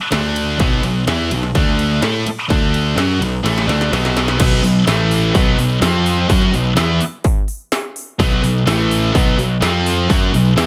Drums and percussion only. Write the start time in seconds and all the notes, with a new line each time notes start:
0.12 snare, ride
0.36 ride
0.60 kick, ride
0.83 ride
1.08 snare, ride
1.31 ride
1.43 snare
1.55 kick, ride
1.79 ride
2.02 snare, ride
2.27 ride
2.50 kick, ride
2.74 ride
2.98 snare, ride
3.22 ride
3.46 snare, ride
3.58 snare
3.69 snare, ride
3.81 snare
3.93 snare, ride
4.05 snare
4.17 snare, ride
4.28 snare
4.40 kick, open hi-hat, crash
4.52 snare
4.64 open hi-hat
4.87 snare, open hi-hat
5.11 open hi-hat
5.35 kick, open hi-hat
5.59 open hi-hat
5.82 snare, open hi-hat
6.06 open hi-hat
6.30 kick, open hi-hat
6.42 snare
6.54 open hi-hat
6.77 snare, open hi-hat
7.01 open hi-hat
7.24 kick, open hi-hat
7.48 open hi-hat
7.72 snare, open hi-hat
7.96 open hi-hat
8.20 kick, open hi-hat
8.32 snare
8.44 open hi-hat
8.67 snare, open hi-hat
8.91 open hi-hat
9.15 kick, open hi-hat
9.39 open hi-hat
9.62 snare, open hi-hat
9.86 open hi-hat
10.10 kick, open hi-hat
10.34 open hi-hat
10.58 snare, open hi-hat